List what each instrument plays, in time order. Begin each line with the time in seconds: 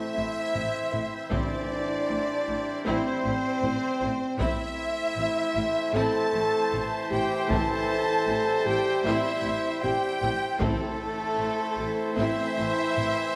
Already playing: trombone section E3 A3, viola section C4 E4, woodwind section C4 E4 C5 E5, french horn section E4, trumpet C5, violin section E5, flute E5
0.15 double bass section A1, cello section A2, viola section C4 E4
0.54 double bass section A1, cello section A2, viola section C4 E4, taiko low-mid
0.91 double bass section A1, cello section A2, viola section C4 E4, taiko low-mid
1.30 double bass section A1, cello section A2, timpani A2, trombone section G3, viola section C4 E4, french horn section D4, violin section D5, flute D5, taiko
2.08 double bass section A1, cello section A2, viola section C4 E4
2.47 double bass section A1, cello section A2, viola section C4 E4
2.86 double bass section A1, cello section A2, viola section C4 E4, french horn section C4, violin section C5, flute C5
3.25 double bass section A1, cello section A2, viola section C4 E4
3.62 double bass section A1, cello section A2, viola section C4 E4, taiko low-mid
4.00 double bass section A1, cello section A2, viola section C4 E4, taiko low-mid
4.38 double bass section A1, cello section A2, trombone section E3 A3, viola section C4 E4, woodwind section C4 C5 E5, french horn section E4, trumpet C5, violin section E5, flute E5, taiko
4.42 woodwind section E4
5.16 double bass section A1, cello section A2, viola section C4 E4
5.55 double bass section A1, cello section A2, viola section C4 E4
5.93 double bass section A1, cello section A2, viola section C4 E4, french horn section A4, violin section A5, flute A5
6.33 double bass section A1, cello section A2, viola section C4 E4
6.72 double bass section A1, cello section A2, viola section C4 E4, taiko low-mid
7.10 double bass section A1, cello section A2, viola section C4 E4, french horn section G4, violin section G5, flute G5, taiko low-mid
7.48 double bass section A1, cello section A2, timpani A2, trombone section G3, viola section E4, french horn section A4, violin section A5, flute A5, taiko
7.52 viola section C4
8.27 double bass section A1, cello section A2, viola section C4 E4
8.65 double bass section A1, cello section A2, viola section C4 E4, french horn section G4, violin section G5, flute G5
9.03 double bass section A1, cello section A2, viola section C4 E4, french horn section E4, violin section E5, flute E5
9.42 double bass section A1, cello section A2, viola section C4 E4
9.82 double bass section A1, cello section A2, viola section C4 E4, french horn section G4, violin section G5, flute G5, taiko low-mid
10.22 double bass section A1, cello section A2, viola section C4 E4, taiko low-mid
10.59 double bass section A1, cello section A2, timpani A2, trombone section E3 A3, french horn section A3, viola section C4 E4, woodwind section C4 E4 C5 E5, violin section A4, flute A4, trumpet C5, taiko
11.39 double bass section A1, cello section A2, viola section C4 E4
11.78 double bass section A1, cello section A2, viola section C4 E4
12.16 double bass section A1, cello section A2, viola section C4 E4, french horn section E4, violin section E5, flute E5
12.57 double bass section A1, cello section A2, viola section C4 E4
12.96 double bass section A1, cello section A2, viola section C4 E4, taiko low-mid